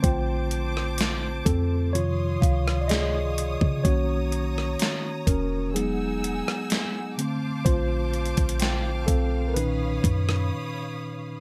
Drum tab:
HH |x---x---x---x---x---x---x---x---|x---x---x---x---x---x---x---x---|x---xxxxx---x---x---x-----------|
SD |------r-o-------------r-o-------|------r-o-------------r-o-------|--------o-------------r---------|
BD |o-----------o-------o---------o-|o-----------o-------------------|o-----o-----o-------o-----------|